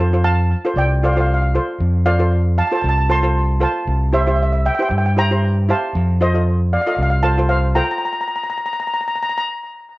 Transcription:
0.00 0.52 F2 loud
0.13 0.44 F4 medium
0.13 0.44 A4 medium
0.13 0.44 C5 medium
0.24 0.73 F5 medium
0.24 0.78 A5 loud
0.65 0.88 F4 medium
0.65 0.88 A4 medium
0.65 0.89 C5 medium
0.76 1.56 C2 loud
0.76 1.01 D5 medium
0.76 1.04 G5 loud
1.03 1.11 F4 medium
1.03 1.12 A4 medium
1.03 1.12 C5 medium
1.03 1.11 D5 medium
1.03 1.12 F5 medium
1.13 1.40 F4 medium
1.13 1.19 F5 medium
1.17 1.40 A4 medium
1.17 1.40 C5 medium
1.17 1.25 F5 medium
1.26 1.33 F5 medium
1.34 1.41 F5 medium
1.42 1.48 F5 medium
1.55 1.80 F4 medium
1.55 1.81 A4 medium
1.55 1.81 C5 medium
1.80 2.60 F2 loud
2.06 2.14 F4 medium
2.06 2.15 A4 medium
2.06 2.15 C5 medium
2.06 2.54 D5 medium
2.06 2.57 F5 medium
2.19 2.50 F4 medium
2.19 2.51 A4 medium
2.19 2.51 C5 medium
2.58 2.66 F5 medium
2.58 2.66 A5 medium
2.67 2.74 A5 medium
2.72 2.95 F4 medium
2.72 2.95 A4 medium
2.72 2.95 C5 medium
2.72 2.80 A5 medium
2.81 3.63 C2 loud
2.81 2.88 A5 medium
2.89 2.97 A5 medium
2.98 3.04 A5 medium
3.09 3.18 F4 medium
3.09 3.18 A4 medium
3.09 3.18 C5 medium
3.09 3.58 A5 medium
3.09 3.64 C6 loud
3.23 3.46 F4 medium
3.23 3.47 A4 medium
3.23 3.47 C5 medium
3.60 3.87 F4 medium
3.60 3.87 A4 medium
3.60 3.88 C5 medium
3.60 3.86 F5 medium
3.60 3.87 A5 medium
3.87 4.67 C2 loud
4.12 4.21 E4 medium
4.12 4.22 G4 medium
4.12 4.22 C5 medium
4.12 4.21 C5 medium
4.12 4.20 E5 medium
4.21 4.27 E5 medium
4.26 4.58 E4 medium
4.26 4.58 G4 medium
4.26 4.58 C5 medium
4.26 4.35 E5 medium
4.36 4.42 E5 medium
4.43 4.51 E5 medium
4.53 4.59 E5 medium
4.66 4.73 E5 medium
4.66 4.74 G5 medium
4.75 4.81 G5 medium
4.79 5.02 E4 medium
4.79 5.02 G4 medium
4.79 5.03 C5 medium
4.79 4.87 G5 medium
4.89 5.70 G2 loud
4.89 4.96 G5 medium
4.98 5.05 G5 medium
5.06 5.12 G5 medium
5.16 5.25 E4 medium
5.16 5.25 G4 medium
5.16 5.26 C5 medium
5.16 5.66 G5 medium
5.16 5.66 A#5 loud
5.31 5.54 E4 medium
5.31 5.54 G4 medium
5.31 5.55 C5 medium
5.69 5.95 E4 medium
5.69 5.95 G4 medium
5.69 5.95 C5 medium
5.69 5.82 F5 medium
5.69 5.82 A5 medium
5.95 6.74 F2 loud
6.21 6.29 F4 medium
6.21 6.29 A4 medium
6.21 6.30 C5 medium
6.21 6.70 C5 medium
6.21 6.70 D#5 medium
6.34 6.65 F4 medium
6.34 6.65 A4 medium
6.34 6.66 D#5 medium
6.73 6.80 D5 medium
6.73 6.80 F5 medium
6.81 6.87 F5 medium
6.87 7.10 F4 medium
6.87 7.10 A4 medium
6.87 7.10 D#5 medium
6.87 6.94 F5 medium
6.95 7.77 C2 loud
6.95 7.02 F5 medium
7.03 7.09 F5 medium
7.10 7.18 F5 medium
7.23 7.32 F4 medium
7.23 7.32 A4 medium
7.23 7.33 C5 medium
7.23 7.48 F5 medium
7.23 7.50 A5 loud
7.38 7.61 F4 medium
7.38 7.61 A4 medium
7.38 7.62 C5 medium
7.49 7.74 C5 medium
7.49 7.76 F5 loud
7.75 8.01 F4 medium
7.75 8.02 A4 medium
7.75 8.02 C5 medium
7.75 7.83 G5 medium
7.75 7.83 A#5 loud
7.84 7.90 A#5 medium
7.91 7.97 A#5 medium
7.98 8.04 A#5 medium
8.05 8.11 A#5 medium
8.13 8.19 A#5 medium
8.21 8.26 A#5 medium
8.28 8.34 A#5 medium
8.36 8.42 A#5 medium
8.43 8.48 A#5 medium
8.50 8.56 A#5 medium
8.58 8.65 A#5 medium
8.66 8.72 A#5 medium
8.73 8.79 A#5 medium
8.80 8.86 A#5 medium
8.87 8.92 A#5 medium
8.94 9.00 A#5 medium
9.01 9.06 A#5 medium
9.08 9.14 A#5 medium
9.16 9.21 A#5 medium
9.23 9.28 A#5 medium
9.29 9.36 A#5 medium
9.38 9.46 A#5 medium

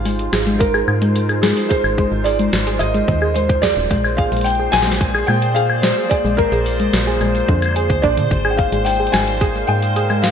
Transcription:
0.00 0.29 G#1 medium
0.00 3.91 G#3 medium
0.00 3.91 D#4 medium
0.00 9.11 F4 medium
0.00 0.85 G4 medium
0.00 10.31 C5 medium
0.00 0.63 F5 loud
0.00 1.16 F5 medium
0.05 0.18 G#3 medium
0.05 open hi-hat medium
0.19 closed hi-hat soft
0.33 0.84 G#1 loud
0.33 0.43 G#4 medium
0.33 snare loud
0.33 high woodblock medium
0.47 0.57 G#3 medium
0.47 closed hi-hat medium
0.58 5.44 A#4 medium
0.58 1.45 A#4 medium
0.58 kick loud
0.58 closed hi-hat medium
0.74 0.84 G#4 medium
0.74 high woodblock medium
0.88 1.53 G#2 medium
0.88 high woodblock medium
1.02 1.15 G#3 medium
1.02 closed hi-hat medium
1.16 closed hi-hat medium
1.29 1.39 G#4 medium
1.29 closed hi-hat soft
1.29 high woodblock medium
1.42 1.53 G#3 medium
1.42 1.71 G#4 medium
1.42 snare loud
1.57 open hi-hat medium
1.69 1.81 G#4 medium
1.69 2.27 C5 loud
1.69 kick loud
1.69 closed hi-hat medium
1.84 2.06 G#1 medium
1.84 high woodblock medium
1.98 2.11 G#3 medium
1.98 kick loud
2.12 2.49 G#1 medium
2.24 2.36 G#4 medium
2.24 2.82 D5 medium
2.24 open hi-hat medium
2.39 2.49 G#3 medium
2.39 closed hi-hat soft
2.53 2.80 G#1 medium
2.53 snare loud
2.67 2.77 G#4 medium
2.67 closed hi-hat medium
2.79 3.03 G#1 loud
2.79 3.37 D#5 loud
2.79 closed hi-hat medium
2.79 high woodblock soft
2.94 3.07 G#3 medium
2.94 closed hi-hat soft
3.08 3.73 D#2 loud
3.08 kick loud
3.22 3.32 G#4 medium
3.22 high woodblock medium
3.34 3.46 G#3 medium
3.34 3.63 C5 loud
3.34 closed hi-hat medium
3.49 kick loud
3.49 closed hi-hat soft
3.62 3.73 G#4 medium
3.62 4.19 D5 loud
3.62 kick medium
3.62 snare loud
3.70 closed hi-hat medium
3.77 3.88 D#1 loud
3.91 4.28 A#1 loud
3.91 4.04 G#3 medium
3.91 9.75 A#3 medium
3.91 kick loud
3.91 closed hi-hat medium
4.04 high woodblock medium
4.17 4.28 G#4 medium
4.17 4.46 F5 loud
4.17 kick loud
4.26 9.60 G#4 medium
4.32 4.69 A#1 medium
4.32 4.42 G#3 medium
4.32 closed hi-hat medium
4.37 closed hi-hat soft
4.41 4.73 G5 loud
4.41 closed hi-hat soft
4.46 10.07 D5 medium
4.46 closed hi-hat soft
4.46 open hi-hat medium
4.50 closed hi-hat soft
4.55 closed hi-hat soft
4.59 4.70 G#4 medium
4.72 5.24 A#1 loud
4.72 5.29 G#5 loud
4.72 snare loud
4.72 high woodblock medium
4.82 snare loud
4.87 5.00 G#3 medium
4.87 closed hi-hat medium
4.92 snare medium
5.01 kick loud
5.01 closed hi-hat medium
5.15 5.25 G#4 medium
5.15 high woodblock medium
5.27 5.93 A#2 medium
5.27 5.38 G#3 medium
5.27 5.56 G5 loud
5.27 high woodblock medium
5.42 closed hi-hat medium
5.54 5.66 G#4 medium
5.54 5.81 F5 loud
5.54 closed hi-hat medium
5.70 high woodblock medium
5.82 5.96 G#3 medium
5.82 6.11 C5 medium
5.82 snare loud
6.10 6.21 G#4 medium
6.10 6.36 D5 loud
6.10 kick loud
6.10 closed hi-hat medium
6.25 6.47 A#1 medium
6.25 6.35 G#3 medium
6.37 7.44 A#4 loud
6.37 kick loud
6.52 6.89 A#1 medium
6.52 6.62 G#4 medium
6.52 closed hi-hat medium
6.66 open hi-hat medium
6.80 6.93 G#3 medium
6.80 closed hi-hat soft
6.93 7.20 A#1 medium
6.93 snare loud
7.07 7.17 G#4 medium
7.07 closed hi-hat medium
7.21 7.43 A#1 loud
7.21 7.31 G#3 medium
7.21 closed hi-hat medium
7.21 high woodblock soft
7.35 closed hi-hat soft
7.49 7.89 F2 loud
7.49 7.59 D3 medium
7.49 kick loud
7.62 closed hi-hat medium
7.62 high woodblock soft
7.66 high woodblock soft
7.69 high woodblock soft
7.73 7.86 G#4 medium
7.73 8.04 C5 medium
7.73 closed hi-hat medium
7.73 high woodblock soft
7.90 8.01 D2 medium
7.90 kick loud
7.90 closed hi-hat soft
8.02 8.19 A#1 loud
8.02 8.17 D4 medium
8.02 8.48 D5 loud
8.02 kick medium
8.17 8.28 A#2 medium
8.17 8.23 D3 medium
8.17 closed hi-hat medium
8.31 8.68 G#1 loud
8.31 10.31 G#3 medium
8.31 kick loud
8.31 closed hi-hat medium
8.36 10.31 D#4 medium
8.45 8.55 G#4 medium
8.45 high woodblock medium
8.50 8.58 G5 medium
8.57 8.86 F5 medium
8.57 kick loud
8.69 9.09 G#1 medium
8.69 8.85 G#3 medium
8.69 10.31 F5 medium
8.69 closed hi-hat medium
8.85 9.14 G5 medium
8.85 open hi-hat medium
9.00 9.10 G#4 medium
9.04 10.31 A#4 medium
9.04 closed hi-hat soft
9.12 9.64 G#1 loud
9.12 9.24 G#3 medium
9.12 9.70 G#5 loud
9.12 snare loud
9.12 high woodblock medium
9.27 closed hi-hat medium
9.41 9.51 G#4 medium
9.41 kick loud
9.41 closed hi-hat medium
9.67 10.31 G#2 medium
9.67 9.82 G#3 medium
9.67 10.25 G5 loud
9.67 high woodblock medium
9.82 closed hi-hat soft
9.96 10.06 G#4 medium
9.96 closed hi-hat medium
10.10 10.20 G#3 medium
10.10 closed hi-hat soft
10.10 high woodblock medium
10.22 10.29 F5 loud
10.22 snare loud

